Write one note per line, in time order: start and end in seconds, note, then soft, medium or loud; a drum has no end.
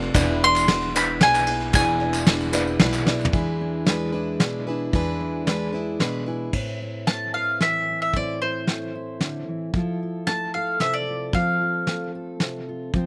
0.00 0.11 F1 loud
0.00 0.11 F1 medium
0.00 0.11 F2 medium
0.00 0.15 A3 medium
0.00 0.17 C4 medium
0.00 0.15 D4 medium
0.00 0.16 D4 medium
0.00 0.17 F4 medium
0.00 0.16 A4 medium
0.00 0.17 A4 medium
0.00 0.16 C5 medium
0.00 0.15 D5 medium
0.00 0.17 E5 medium
0.00 clap soft
0.14 1.17 E1 loud
0.14 1.70 E2 medium
0.14 0.72 E3 medium
0.14 1.70 E3 medium
0.14 0.68 G#3 medium
0.14 0.34 B3 loud
0.14 0.34 D4 medium
0.14 0.69 D4 medium
0.14 0.34 E4 medium
0.14 0.69 E4 loud
0.14 0.34 G#4 medium
0.14 0.70 B4 loud
0.14 0.34 D5 loud
0.14 kick loud
0.14 clap loud
0.14 ride medium
0.14 tambourine medium
0.42 0.61 B3 medium
0.42 0.61 D4 medium
0.42 0.61 E4 medium
0.42 0.61 D5 medium
0.42 0.96 C6 loud
0.56 clap medium
0.56 tambourine medium
0.68 0.95 G#3 medium
0.68 0.88 B3 medium
0.68 0.88 D4 medium
0.68 0.88 E4 medium
0.68 0.95 E4 medium
0.68 0.88 G#4 medium
0.68 0.93 B4 medium
0.68 0.88 D5 medium
0.68 snare medium
0.68 ride medium
0.82 clap soft
0.94 1.14 B3 medium
0.94 1.14 D4 medium
0.94 1.20 D4 soft
0.94 1.14 E4 medium
0.94 1.21 E4 soft
0.94 1.14 G#4 medium
0.94 1.21 B4 medium
0.94 1.14 D5 medium
0.94 1.22 B5 medium
0.94 clap medium
0.94 tambourine medium
1.20 1.71 B1 loud
1.20 1.74 G#3 medium
1.20 1.41 B3 medium
1.20 1.41 D4 medium
1.20 1.41 E4 medium
1.20 1.75 E4 medium
1.20 1.41 G#4 medium
1.20 1.76 B4 medium
1.20 1.41 D5 medium
1.20 1.74 G#5 medium
1.20 snare medium
1.20 ride medium
1.35 clap medium
1.35 tambourine medium
1.47 1.67 B3 medium
1.47 1.67 D4 medium
1.47 1.67 E4 medium
1.47 1.67 G#4 medium
1.47 1.67 D5 medium
1.47 ride medium
1.61 clap soft
1.73 2.76 E1 loud
1.73 3.30 E2 medium
1.73 2.27 E3 medium
1.73 3.30 E3 medium
1.73 2.24 G#3 medium
1.73 1.94 B3 medium
1.73 1.94 D4 medium
1.73 2.26 D4 medium
1.73 1.94 E4 medium
1.73 2.27 E4 medium
1.73 1.94 G#4 medium
1.73 2.28 B4 medium
1.73 1.94 D5 medium
1.73 2.77 G#5 medium
1.73 kick loud
1.73 clap medium
1.73 ride medium
1.73 tambourine medium
2.01 2.20 B3 medium
2.01 2.20 D4 medium
2.01 2.20 E4 medium
2.01 2.20 G#4 medium
2.01 2.20 D5 medium
2.01 clap soft
2.14 clap medium
2.14 tambourine medium
2.26 2.53 G#3 medium
2.26 2.47 B3 medium
2.26 2.54 D4 medium
2.26 2.47 D4 medium
2.26 2.47 E4 medium
2.26 2.52 E4 medium
2.26 2.47 G#4 medium
2.26 2.51 B4 medium
2.26 2.47 D5 medium
2.26 snare medium
2.26 ride medium
2.40 clap soft
2.40 tambourine soft
2.52 2.73 B3 medium
2.52 2.73 D4 medium
2.52 2.79 D4 soft
2.52 2.80 E4 medium
2.52 2.73 E4 medium
2.52 2.73 G#4 medium
2.52 2.80 B4 medium
2.52 2.73 D5 medium
2.52 clap loud
2.52 tambourine medium
2.67 tambourine soft
2.79 3.30 B1 medium
2.79 3.07 G#3 medium
2.79 3.00 B3 medium
2.79 3.07 D4 medium
2.79 3.00 D4 medium
2.79 3.00 E4 medium
2.79 3.06 E4 medium
2.79 3.00 G#4 medium
2.79 3.04 B4 medium
2.79 3.00 D5 medium
2.79 snare medium
2.79 clap soft
2.79 ride medium
2.93 clap medium
2.93 tambourine medium
3.05 3.27 B3 medium
3.05 3.27 D4 medium
3.05 3.32 D4 soft
3.05 3.32 E4 soft
3.05 3.26 E4 medium
3.05 3.27 G#4 medium
3.05 3.33 B4 medium
3.05 3.27 D5 medium
3.05 snare medium
3.20 clap soft
3.20 tambourine soft
3.25 floor tom medium
3.32 4.36 E2 medium
3.32 3.89 E3 medium
3.32 4.93 E3 medium
3.32 3.84 G#3 medium
3.32 3.85 D4 medium
3.32 3.87 E4 medium
3.32 3.87 G#4 medium
3.32 3.88 B4 medium
3.32 kick loud
3.32 closed hi-hat medium
3.61 4.13 D4 medium
3.85 4.13 G#3 medium
3.85 4.90 G#3 medium
3.85 4.13 D4 medium
3.85 4.13 E4 medium
3.85 4.66 G#4 medium
3.85 4.11 B4 medium
3.85 snare medium
3.85 closed hi-hat medium
4.12 4.90 D4 medium
4.12 4.40 D4 soft
4.12 4.40 E4 soft
4.12 4.40 B4 medium
4.40 4.90 B2 medium
4.40 4.67 G#3 medium
4.40 4.67 D4 medium
4.40 4.68 E4 medium
4.40 4.66 B4 medium
4.40 snare medium
4.40 closed hi-hat medium
4.67 4.93 D4 soft
4.67 4.94 E4 soft
4.67 4.90 G#4 medium
4.67 4.93 B4 medium
4.93 5.96 E2 medium
4.93 6.50 E3 medium
4.93 5.47 E3 medium
4.93 5.46 G#3 medium
4.93 5.47 D4 medium
4.93 5.47 E4 medium
4.93 5.45 G#4 medium
4.93 5.48 B4 medium
4.93 kick medium
4.93 closed hi-hat medium
5.21 5.72 D4 medium
5.46 6.50 G#3 medium
5.46 5.73 G#3 medium
5.46 5.74 D4 medium
5.46 5.73 E4 medium
5.46 6.27 G#4 medium
5.46 5.71 B4 medium
5.46 snare medium
5.46 closed hi-hat medium
5.73 6.50 D4 medium
5.73 5.99 D4 soft
5.73 6.00 E4 soft
5.73 6.00 B4 medium
5.99 6.50 B2 medium
5.99 6.26 G#3 medium
5.99 6.27 D4 medium
5.99 6.27 E4 medium
5.99 6.25 B4 medium
5.99 snare medium
5.99 closed hi-hat medium
6.26 6.55 D4 soft
6.26 6.54 E4 soft
6.26 6.51 G#4 soft
6.26 6.53 B4 soft
6.53 8.14 A2 medium
6.53 8.16 C4 soft
6.53 6.82 E4 soft
6.53 7.36 B4 medium
6.53 kick medium
6.53 crash medium
6.82 7.89 E4 soft
7.07 8.68 A3 soft
7.07 7.32 A5 medium
7.07 snare medium
7.07 closed hi-hat soft
7.34 8.12 B4 medium
7.34 7.59 F5 medium
7.61 9.21 E3 soft
7.61 8.01 E5 medium
7.61 snare medium
7.61 closed hi-hat soft
7.89 8.16 E4 soft
8.02 8.15 E5 medium
8.14 9.75 A2 medium
8.14 9.75 C4 soft
8.14 8.43 E4 soft
8.14 8.41 D5 medium
8.14 kick medium
8.14 closed hi-hat soft
8.18 9.76 C5 medium
8.42 8.95 E4 soft
8.42 9.44 C5 medium
8.67 10.28 A3 soft
8.67 snare medium
8.67 closed hi-hat soft
8.95 9.75 E4 soft
9.21 9.48 D3 soft
9.21 snare medium
9.21 closed hi-hat soft
9.48 9.74 E3 soft
9.74 11.34 F3 medium
9.74 11.31 E4 soft
9.74 10.02 F4 soft
9.74 10.55 A4 medium
9.74 kick medium
9.74 closed hi-hat soft
10.03 11.08 F4 soft
10.27 11.87 A3 soft
10.27 10.54 A5 medium
10.27 snare medium
10.27 closed hi-hat soft
10.54 11.36 A4 medium
10.54 10.80 F5 medium
10.80 11.31 C3 soft
10.80 10.94 E5 medium
10.80 snare medium
10.80 closed hi-hat soft
10.94 11.35 D5 medium
11.08 11.35 F4 soft
11.33 12.93 F3 medium
11.33 12.94 C4 soft
11.33 11.61 F4 soft
11.33 12.15 A4 medium
11.33 12.10 F5 medium
11.33 kick medium
11.33 closed hi-hat soft
11.61 12.68 F4 soft
11.87 13.06 A3 soft
11.87 snare medium
11.87 closed hi-hat soft
12.15 12.96 A4 soft
12.40 12.91 C3 medium
12.40 snare medium
12.40 closed hi-hat soft
12.69 12.95 F4 soft
12.93 13.06 F2 medium
12.93 13.06 F3 medium
12.93 13.06 C4 soft
12.93 13.06 F4 soft
12.93 13.06 C5 medium
12.93 kick medium
12.93 closed hi-hat soft